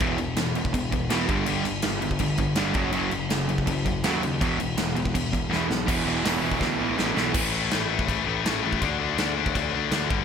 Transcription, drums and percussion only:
0.01 kick
0.18 crash
0.36 snare, crash
0.55 crash
0.65 kick
0.74 kick, crash
0.92 kick, crash
1.10 snare, crash
1.29 kick, crash
1.46 crash
1.65 crash
1.82 snare, crash
2.02 crash
2.11 kick
2.19 kick, crash
2.38 kick, crash
2.55 snare, crash
2.74 kick, crash
2.92 crash
3.11 crash
3.30 snare, crash
3.49 crash
3.58 kick
3.67 kick, crash
3.86 kick, crash
4.04 snare, crash
4.23 crash
4.41 kick, crash
4.60 crash
4.77 snare, crash
4.96 crash
5.05 kick
5.15 kick, crash
5.33 kick, crash
5.53 snare
5.71 snare
5.88 kick, crash
6.25 snare, open hi-hat
6.52 kick
6.61 kick, snare
6.99 snare
7.17 snare
7.34 kick, crash
7.71 snare, crash
7.99 kick
8.08 kick, crash
8.45 snare, crash
8.73 kick
8.82 kick, crash
9.18 snare, crash
9.46 kick
9.55 kick, crash
9.91 snare, crash
10.10 kick

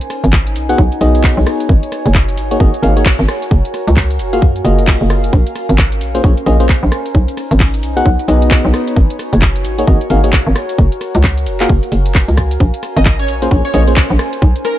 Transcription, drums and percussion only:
0.01 closed hi-hat
0.10 cross-stick, open hi-hat, shaker
0.24 closed hi-hat, shaker
0.33 kick, clap, shaker
0.47 closed hi-hat
0.56 open hi-hat, shaker
0.69 closed hi-hat, shaker
0.77 kick, shaker
0.92 closed hi-hat
1.01 open hi-hat, shaker
1.15 closed hi-hat, shaker
1.24 kick, clap, shaker
1.47 cross-stick, open hi-hat, shaker
1.60 closed hi-hat, shaker
1.69 kick, shaker
1.83 closed hi-hat
1.91 cross-stick, open hi-hat, shaker
2.06 closed hi-hat, shaker
2.13 kick, clap, shaker
2.28 closed hi-hat
2.37 open hi-hat, shaker
2.51 closed hi-hat, shaker
2.60 kick, shaker
2.74 closed hi-hat
2.83 open hi-hat, shaker
2.97 closed hi-hat, shaker
3.06 kick, clap, shaker
3.28 cross-stick, open hi-hat, shaker
3.42 closed hi-hat, shaker
3.51 kick, shaker
3.65 closed hi-hat
3.74 cross-stick, open hi-hat, shaker
3.88 closed hi-hat, shaker
3.96 kick, clap, shaker
4.10 closed hi-hat
4.19 open hi-hat, shaker
4.33 closed hi-hat, shaker
4.42 kick
4.56 closed hi-hat
4.65 open hi-hat, shaker
4.79 closed hi-hat, shaker
4.87 kick, clap, shaker
5.10 cross-stick, open hi-hat, shaker
5.24 closed hi-hat, shaker
5.33 kick, shaker
5.47 closed hi-hat
5.56 cross-stick, open hi-hat, shaker
5.69 closed hi-hat, shaker
5.78 kick, clap, shaker
5.92 closed hi-hat
6.01 open hi-hat, shaker
6.15 closed hi-hat, shaker
6.24 kick
6.37 closed hi-hat
6.46 open hi-hat, shaker
6.60 closed hi-hat, shaker
6.69 kick, clap, shaker
6.92 cross-stick, open hi-hat, shaker
7.05 closed hi-hat, shaker
7.14 kick, shaker
7.28 closed hi-hat
7.37 cross-stick, open hi-hat, shaker
7.51 closed hi-hat, shaker
7.60 kick, clap, shaker
7.74 closed hi-hat
7.83 open hi-hat, shaker
7.97 closed hi-hat, shaker
8.06 kick
8.19 closed hi-hat
8.28 open hi-hat, shaker
8.42 closed hi-hat, shaker
8.51 kick, clap, shaker
8.74 cross-stick, open hi-hat, shaker
8.87 closed hi-hat, shaker
8.96 kick, shaker
9.10 closed hi-hat
9.19 cross-stick, open hi-hat, shaker
9.33 closed hi-hat, shaker
9.42 kick, clap, shaker
9.56 closed hi-hat
9.64 open hi-hat, shaker
9.78 closed hi-hat, shaker
9.87 kick, shaker
10.01 closed hi-hat
10.10 open hi-hat, shaker
10.24 closed hi-hat, shaker
10.33 kick, clap, shaker
10.55 cross-stick, open hi-hat, shaker
10.69 closed hi-hat, shaker
10.78 kick, shaker
10.92 closed hi-hat
11.01 cross-stick, open hi-hat, shaker
11.15 closed hi-hat, shaker
11.24 kick, clap
11.37 closed hi-hat
11.46 open hi-hat, shaker
11.60 clap, closed hi-hat, shaker
11.69 kick, shaker
11.83 closed hi-hat
11.92 open hi-hat, shaker
12.06 closed hi-hat, shaker
12.15 kick, clap, shaker
12.28 closed hi-hat
12.37 kick, cross-stick, open hi-hat, shaker
12.50 closed hi-hat, shaker
12.60 kick, shaker
12.74 closed hi-hat
12.83 cross-stick, open hi-hat, shaker
12.97 closed hi-hat, shaker
13.06 kick, clap, shaker
13.19 closed hi-hat
13.28 open hi-hat, shaker
13.42 closed hi-hat, shaker
13.51 kick, shaker
13.65 closed hi-hat
13.74 open hi-hat, shaker
13.87 closed hi-hat, shaker
13.96 kick, clap
14.19 cross-stick, open hi-hat, shaker
14.33 closed hi-hat, shaker
14.42 kick, shaker
14.56 closed hi-hat
14.65 cross-stick, open hi-hat, shaker

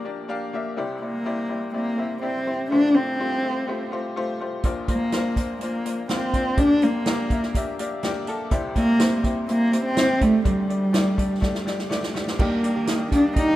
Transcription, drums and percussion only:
4.63 kick, closed hi-hat
4.88 kick, closed hi-hat
5.12 snare, closed hi-hat
5.36 kick, closed hi-hat
5.61 closed hi-hat
5.86 closed hi-hat
6.09 snare, closed hi-hat
6.34 kick, closed hi-hat
6.57 kick, closed hi-hat
6.82 closed hi-hat
7.06 snare, closed hi-hat
7.30 kick, closed hi-hat
7.43 snare
7.55 kick, closed hi-hat
7.79 closed hi-hat
8.03 snare, closed hi-hat
8.27 closed hi-hat
8.51 kick, closed hi-hat
8.76 kick, closed hi-hat
9.00 snare, closed hi-hat
9.24 kick, closed hi-hat
9.49 closed hi-hat
9.73 closed hi-hat
9.97 snare, closed hi-hat
10.21 kick, closed hi-hat
10.45 kick, closed hi-hat
10.70 closed hi-hat
10.94 snare, closed hi-hat
11.18 kick, closed hi-hat
11.42 kick, snare
11.55 snare
11.67 snare
11.79 snare
11.91 snare
12.03 snare
12.15 snare
12.27 snare
12.39 kick, crash
12.64 closed hi-hat
12.87 snare, closed hi-hat
13.12 kick, closed hi-hat
13.36 kick, closed hi-hat

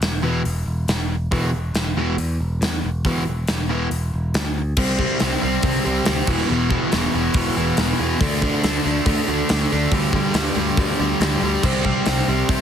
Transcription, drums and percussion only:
0.02 snare, open hi-hat
0.45 open hi-hat
0.88 snare, open hi-hat
1.32 kick, open hi-hat
1.75 snare, open hi-hat
2.18 open hi-hat
2.62 snare, open hi-hat
3.05 kick, open hi-hat
3.48 snare, open hi-hat
3.91 open hi-hat
4.34 snare, open hi-hat
4.77 kick, crash
4.99 kick
5.19 snare, open hi-hat
5.63 kick, open hi-hat
6.05 snare, open hi-hat
6.27 kick, crash
6.70 kick
6.92 snare, open hi-hat
7.34 kick, open hi-hat
7.77 snare, open hi-hat
8.21 kick, open hi-hat
8.42 kick
8.63 snare, open hi-hat
9.06 kick, open hi-hat
9.49 snare, open hi-hat
9.91 kick, open hi-hat
10.13 kick
10.34 snare, open hi-hat
10.77 kick, open hi-hat
11.21 snare, open hi-hat
11.63 kick, crash
11.85 kick
12.06 snare, open hi-hat
12.49 kick, open hi-hat

